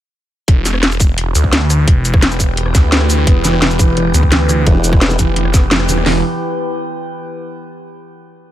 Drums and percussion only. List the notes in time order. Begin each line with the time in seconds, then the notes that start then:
0.48 kick, closed hi-hat
0.65 snare, closed hi-hat, shaker
0.74 cross-stick
0.83 snare, closed hi-hat
0.92 shaker
1.00 kick, closed hi-hat, shaker
1.18 closed hi-hat
1.35 closed hi-hat, shaker
1.44 kick
1.53 snare, closed hi-hat
1.70 cross-stick, closed hi-hat, shaker
1.87 kick, closed hi-hat
2.05 closed hi-hat, shaker
2.14 kick, cross-stick
2.22 snare, closed hi-hat
2.31 shaker
2.40 kick, closed hi-hat, shaker
2.57 closed hi-hat
2.66 cross-stick
2.75 kick, snare, closed hi-hat, shaker
2.92 snare, closed hi-hat
3.01 cross-stick
3.10 closed hi-hat, shaker
3.18 cross-stick
3.27 kick, closed hi-hat
3.44 snare, closed hi-hat, shaker
3.53 cross-stick
3.62 snare, closed hi-hat
3.71 shaker
3.79 kick, closed hi-hat, shaker
3.97 closed hi-hat
4.14 closed hi-hat, shaker
4.23 kick
4.32 snare, closed hi-hat
4.49 cross-stick, closed hi-hat, shaker
4.67 kick, closed hi-hat
4.84 closed hi-hat, shaker
4.93 kick, cross-stick
5.01 snare, closed hi-hat
5.10 shaker
5.19 kick, closed hi-hat, shaker
5.36 closed hi-hat
5.45 cross-stick
5.54 kick, snare, closed hi-hat, shaker
5.71 snare, closed hi-hat
5.80 cross-stick
5.89 closed hi-hat, shaker
5.98 cross-stick
6.06 snare, open hi-hat